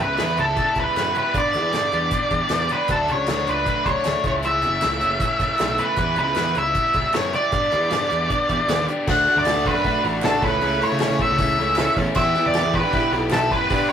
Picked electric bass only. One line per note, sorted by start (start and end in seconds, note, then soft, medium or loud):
0.00 0.17 C#2 loud
0.19 0.37 E2 medium
0.38 0.56 C#2 medium
0.76 0.85 C#2 medium
0.97 1.15 F#2 medium
1.35 1.56 G2 medium
1.54 1.72 E2 medium
1.74 1.92 G2 medium
1.93 2.11 E2 medium
2.31 2.40 E2 medium
2.50 2.68 E2 medium
2.89 3.11 D2 medium
3.09 3.27 C#2 medium
3.29 3.46 D2 medium
3.48 3.65 C#2 medium
3.85 3.95 C#2 medium
4.06 4.14 D2 medium
4.24 4.64 C#2 medium
4.63 4.81 F#1 medium
4.84 5.01 C#2 medium
5.02 5.20 F#1 medium
5.39 5.49 F#1 medium
5.60 5.78 B1 medium
5.98 6.19 E2 medium
6.17 6.35 C#2 loud
6.36 6.55 E2 medium
6.55 6.74 C#2 medium
6.95 7.04 C#2 medium
7.14 7.32 F#2 medium
7.52 7.74 G2 medium
7.72 7.90 E2 medium
7.92 8.10 G2 medium
8.12 8.29 E2 medium
8.49 8.58 E2 medium
8.68 8.86 D#2 loud
9.08 9.26 D2 medium
9.36 9.54 D2 medium
9.56 9.74 D2 medium
9.75 9.93 F#2 medium
10.04 10.22 A1 medium
10.23 10.41 A1 loud
10.43 10.61 C#2 medium
10.62 10.80 C#2 medium
10.92 11.00 C#3 medium
11.10 11.19 C#3 medium
11.30 11.57 C#2 medium
11.59 11.77 C#2 medium
11.78 11.87 C#2 medium
11.97 12.06 E2 loud
12.16 12.34 E2 medium
12.46 12.64 E2 loud
12.65 12.83 E2 medium
12.83 13.02 G2 loud
13.12 13.30 B1 medium
13.32 13.50 B1 loud
13.51 13.69 F#2 medium
13.70 13.88 G2 loud